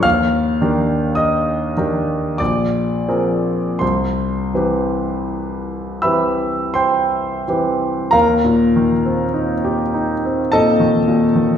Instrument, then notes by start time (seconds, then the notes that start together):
grand piano
0.03 D#2 F5 F6
0.61 D#3 D4 G4 A#4
1.15 D#5 D#6
1.77 D#3 D4 G4 A#4
2.38 A#1 D5 D6
3.08 F3 C4 G#4 A#4
3.79 C2 C5 C6
4.54 E3 C4 G4 B4
6.02 E3 C4 G4 B4 E5 B5 E6
6.74 C5 G5 C6
7.48 E3 C4 G4 B4
8.11 D#2 A#4 F5 A#5
8.44 A#2
8.76 D#3
9.05 C4
9.34 D#4
9.64 G4
9.94 D#4
10.25 C4
10.52 A#2 A4 D#5 A5
10.80 D#3
11.08 A#2
11.35 D#3